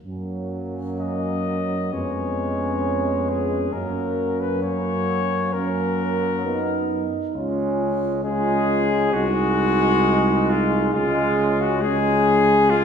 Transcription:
0.06 1.94 F#2 medium
0.06 1.95 F#3 medium
0.06 1.94 A#3 medium
0.06 1.88 C#4 medium
1.00 1.94 D#5 medium
1.92 3.73 F2 medium
1.92 3.74 G#3 medium
1.92 3.72 B3 medium
1.92 3.70 C#4 medium
1.92 3.31 C#5 medium
3.29 3.74 G#4 medium
3.73 7.04 F#2 medium
3.73 4.62 F#3 medium
3.73 4.61 A#3 medium
3.73 4.61 C#4 medium
3.73 4.42 A#4 medium
4.40 4.62 B4 medium
4.62 5.53 F#3 medium
4.62 5.53 A#3 medium
4.62 5.52 C#4 medium
4.62 5.55 C#5 medium
5.53 7.04 F#3 medium
5.53 6.46 A#3 medium
5.53 6.27 C#4 medium
5.53 7.34 A#4 medium
6.44 7.08 B3 medium
6.44 7.33 D#4 medium
7.34 9.14 C#2 medium
7.34 8.21 G#3 medium
7.34 8.21 C#4 medium
7.34 8.24 F4 medium
8.23 9.12 G#3 medium
8.23 9.15 C#4 medium
8.23 9.12 F4 medium
8.23 9.15 G#4 medium
9.13 10.93 C2 medium
9.13 10.93 G#3 medium
9.13 10.90 G#3 medium
9.13 10.91 D#4 medium
9.13 10.51 F#4 loud
10.49 10.93 F4 medium
10.93 12.84 C#2 medium
10.93 11.80 G#3 medium
10.93 11.82 C#4 medium
10.93 11.62 F4 loud
11.61 11.83 F#4 medium
11.82 12.69 G#3 medium
11.82 12.54 C#4 medium
11.82 12.71 G#4 loud
12.70 12.84 G#3 medium
12.70 12.84 C#4 medium
12.70 12.84 F4 loud

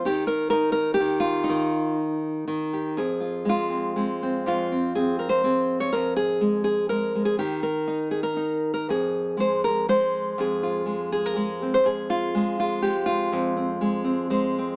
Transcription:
0.05 0.99 D#3 medium
0.05 0.52 D#4 soft
0.05 0.27 G4 medium
0.27 0.49 A#4 loud
0.50 1.43 D#4 medium
0.50 0.71 A#4 loud
0.72 0.94 A#4 loud
0.94 1.69 G4 loud
1.00 1.48 D#3 medium
1.20 1.95 F4 medium
1.44 2.95 D#4 medium
1.49 2.46 D#3 medium
2.48 2.97 D#3 medium
2.73 2.95 G4 soft
2.97 4.46 F2 medium
2.97 3.69 G#4 medium
3.20 3.49 F4 soft
3.45 3.96 G#3 soft
3.49 4.47 F4 medium
3.70 3.96 C4 soft
3.96 4.71 G#3 medium
3.96 4.22 C4 soft
4.23 4.71 C4 soft
4.46 5.92 F2 medium
4.46 5.29 F4 medium
4.72 4.95 C4 soft
4.95 5.43 C4 medium
4.95 5.19 G#4 medium
5.19 5.44 A#4 medium
5.29 5.79 C5 medium
5.44 5.90 C4 medium
5.44 5.90 G#4 soft
5.80 5.93 C#5 medium
5.93 7.39 F2 medium
5.93 6.16 A#4 medium
6.17 6.63 G#4 medium
6.41 6.89 G#3 medium
6.64 6.89 G#4 medium
6.89 7.14 G#3 medium
6.89 7.25 A#4 medium
7.15 7.39 G#3 soft
7.25 7.38 G#4 medium
7.39 8.89 D#3 medium
7.39 7.63 G4 medium
7.63 8.11 A#4 medium
7.88 8.35 D#4 medium
8.11 8.23 G#4 medium
8.23 8.73 A#4 medium
8.37 8.85 D#4 medium
8.74 8.88 A#4 medium
8.89 10.38 F2 medium
8.89 9.90 G#4 medium
9.37 9.88 G#3 medium
9.37 9.64 C5 medium
9.64 9.89 A#4 medium
9.89 10.85 G#3 medium
9.89 10.63 C5 medium
10.38 11.83 F2 medium
10.38 11.11 G#4 medium
10.63 11.26 F4 soft
10.86 11.36 G#3 medium
11.12 11.61 G#4 medium
11.26 11.74 A#4 medium
11.36 12.34 G#3 medium
11.62 11.86 C4 soft
11.74 11.86 C5 medium
11.84 13.31 F2 medium
11.84 12.60 G#4 medium
12.10 12.59 F4 medium
12.35 12.83 G#3 medium
12.60 13.05 F4 medium
12.82 13.81 G#3 medium
12.82 13.33 G4 medium
13.06 14.30 F4 medium
13.32 14.76 F2 medium
13.32 13.55 C4 soft
13.57 14.03 C4 soft
13.81 14.29 G#3 medium
14.05 14.56 C4 soft
14.30 14.76 G#3 medium
14.30 14.76 C5 soft
14.58 14.76 C4 soft

